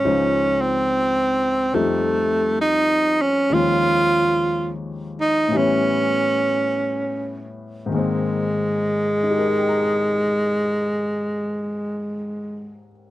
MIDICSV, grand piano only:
0, 0, Header, 1, 2, 480
1, 0, Start_track
1, 0, Key_signature, -4, "major"
1, 0, Tempo, 846262
1, 26, Time_signature, 4, 2, 24, 8
1, 986, Tempo, 895522
1, 1946, Tempo, 969305
1, 2426, Tempo, 1038062
1, 2906, Tempo, 1132075
1, 3386, Tempo, 1250000
1, 3866, Tempo, 1310044
1, 5766, End_track
2, 0, Start_track
2, 0, Title_t, "Grand piano"
2, 0, Program_c, 0, 0
2, 0, Control_c, 0, 64, 127
2, 25, Note_on_c, 0, 37, 45
2, 28, Note_on_c, 0, 53, 41
2, 29, Note_on_c, 0, 49, 39
2, 29, Note_on_c, 0, 72, 40
2, 33, Note_on_c, 0, 63, 49
2, 34, Control_c, 0, 64, 0
2, 147, Control_c, 0, 64, 127
2, 977, Note_off_c, 0, 53, 0
2, 981, Note_on_c, 0, 41, 54
2, 985, Note_off_c, 0, 37, 0
2, 985, Note_on_c, 0, 55, 44
2, 986, Note_on_c, 0, 53, 46
2, 987, Note_off_c, 0, 49, 0
2, 987, Note_off_c, 0, 72, 0
2, 988, Note_off_c, 0, 63, 0
2, 990, Note_on_c, 0, 57, 46
2, 993, Control_c, 0, 64, 0
2, 996, Note_on_c, 0, 63, 52
2, 1101, Control_c, 0, 64, 127
2, 1929, Note_on_c, 0, 39, 46
2, 1937, Note_off_c, 0, 53, 0
2, 1937, Note_on_c, 0, 51, 44
2, 1944, Note_off_c, 0, 41, 0
2, 1945, Note_on_c, 0, 53, 45
2, 1946, Note_off_c, 0, 55, 0
2, 1948, Note_off_c, 0, 57, 0
2, 1951, Note_off_c, 0, 63, 0
2, 1952, Note_on_c, 0, 56, 43
2, 1953, Control_c, 0, 64, 0
2, 1956, Note_on_c, 0, 61, 60
2, 2049, Control_c, 0, 64, 127
2, 2882, Note_on_c, 0, 45, 51
2, 2895, Note_on_c, 0, 52, 46
2, 2899, Note_off_c, 0, 39, 0
2, 2902, Note_off_c, 0, 51, 0
2, 2904, Note_on_c, 0, 55, 45
2, 2906, Note_off_c, 0, 53, 0
2, 2909, Note_off_c, 0, 56, 0
2, 2911, Note_off_c, 0, 61, 0
2, 2911, Control_c, 0, 64, 0
2, 2917, Note_on_c, 0, 59, 49
2, 2928, Note_on_c, 0, 61, 59
2, 2990, Control_c, 0, 64, 127
2, 3844, Note_on_c, 0, 44, 51
2, 3855, Note_on_c, 0, 51, 43
2, 3856, Note_off_c, 0, 45, 0
2, 3862, Note_off_c, 0, 52, 0
2, 3864, Note_on_c, 0, 56, 39
2, 3865, Note_off_c, 0, 55, 0
2, 3871, Note_off_c, 0, 59, 0
2, 3871, Control_c, 0, 64, 0
2, 3875, Note_off_c, 0, 61, 0
2, 3875, Note_on_c, 0, 58, 47
2, 3886, Note_on_c, 0, 60, 49
2, 3944, Control_c, 0, 64, 127
2, 4347, Note_on_c, 0, 63, 43
2, 4374, Note_on_c, 0, 67, 40
2, 4403, Note_on_c, 0, 70, 38
2, 4438, Note_on_c, 0, 75, 36
2, 4475, Note_on_c, 0, 79, 35
2, 4514, Note_on_c, 0, 82, 35
2, 4556, Note_on_c, 0, 87, 35
2, 5652, Note_off_c, 0, 44, 0
2, 5662, Note_off_c, 0, 51, 0
2, 5672, Note_off_c, 0, 56, 0
2, 5682, Note_off_c, 0, 58, 0
2, 5693, Note_off_c, 0, 60, 0
2, 5766, Note_off_c, 0, 63, 0
2, 5766, Note_off_c, 0, 67, 0
2, 5766, Note_off_c, 0, 70, 0
2, 5766, Note_off_c, 0, 75, 0
2, 5766, Note_off_c, 0, 79, 0
2, 5766, Note_off_c, 0, 82, 0
2, 5766, Note_off_c, 0, 87, 0
2, 5766, End_track
0, 0, End_of_file